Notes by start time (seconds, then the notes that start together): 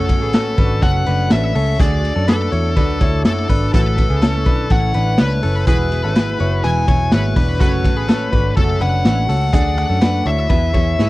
Already playing: F#1 A3 C#4 F#4 A4 C#5
0.08 F#3 A3 C#4 F#4, kick, ride
0.22 A1 B3 G#4
0.33 F#3 A3 C#4 F#4 A4 B4, snare, ride
0.57 G#1 F#3 A3 C#4 D4 F#4 B4, kick, ride
0.82 F#1 F#2 C#3 F#3 A3 C#4 F#4 A4 B4 F#5, kick, ride
1.06 F#1 F#3 A3 C#4 D4 F#4 B4, ride
1.30 A1 F#3 A3 C#4 F#4 A4 C#5 E5, snare, ride
1.54 C#2 F#3 A3 C#4 F#4 A4, open hi-hat, ride
1.79 D2 D3 F#3 A3 D4 F#4 G#4 A4 D5, kick, hi-hat pedal, ride
2.03 A3 D4 F#4, ride
2.16 F#2 C#4 A4
2.28 F#3 A3 D4 F#4 A4 B4 D5, snare, ride
2.52 E2 A3 D4 E4 F#4 C#5, ride
2.76 D2 D3 F#3 A3 D4 F#4 A4 B4 D5, kick, ride
3.01 D2 A3 D4 E4 F#4 C#5, kick, ride
3.25 F#2 F#3 A3 D4 F#4 A4 D5, snare, ride
3.49 G#1 A3 D4 F#4 B4, kick, open hi-hat, ride
3.73 A1 A3 C#4 E4 F#4 A4 B4, kick, hi-hat pedal, ride
3.97 C#4 E4 B4, kick, ride
4.10 C#2 B3 G#4
4.22 A3 C#4 E4 A4 B4 C#5, snare, ride
4.46 B1 C#4 D4 E4 B4, kick, ride
4.70 A1 A3 C#4 E4 A4 B4 C#5 F#5, kick, ride
4.94 A1 C#4 D4 E4 B4, ride
5.18 C#2 A3 C#4 E4 A4 B4 C#5, snare, ride
5.43 F#1 C#4 E4 A4 B4, open hi-hat, ride
5.67 E1 E3 G#3 B3 E4 F#4 G#4 B4, kick, hi-hat pedal, ride
5.91 B3 E4 F#4, ride
6.04 G#1 C#4 A4
6.14 G#3 B3 E4 F#4 G#4 B4, snare, ride
6.39 F#1 B3 E4 F#4 C#5, ride
6.63 E1 E3 G#3 B3 E4 F#4 G#4 B4 G#5, ride
6.87 E1 B3 E4 F#4 C#5, kick, ride
7.11 G#1 G#3 B3 E4 F#4 G#4 B4 C#5, snare, ride
7.36 E1 B3 D4 E4 F#4 B4, kick, open hi-hat, ride
7.59 F#1 F#2 C#3 F#3 A3 C#4 F#4 A4 B4 C#5, kick, hi-hat pedal, ride
7.84 F#3 A3 C#4 F#4, kick, ride
7.97 A1 B3 G#4
8.07 F#3 A3 C#4 F#4 A4 C#5, snare, ride
8.32 G#1 F#3 A3 C#4 D4 F#4 B4, kick, ride
8.56 F#1 F#2 C#3 F#3 A3 C#4 F#4 A4 E5, kick, ride
8.80 F#1 F#3 A3 C#4 D4 F#4 B4 F#5, ride
9.04 A1 F#3 A3 C#4 F#4 A4 C#5, snare, ride
9.28 C#2 F#3 A3 C#4 F#4 A4, open hi-hat, ride
9.52 D2 D3 F#3 A3 D4 F#4 G#4 A4 D5 F#5, kick, hi-hat pedal, ride
9.77 A3 D4 F#4 F#5, ride
9.90 F#2 C#4 A4
10.00 F#3 A3 D4 F#4 A4 B4 D5, snare, ride
10.25 D2 A3 D4 E4 F#4 C#5 E5, ride
10.49 E2 E3 B3 E4 G#4 B4 E5, kick, ride
10.74 E2 B3 E4 G#4 C#5, kick, ride
10.98 G#2 E3 B3 E4 G#4 B4 C#5, snare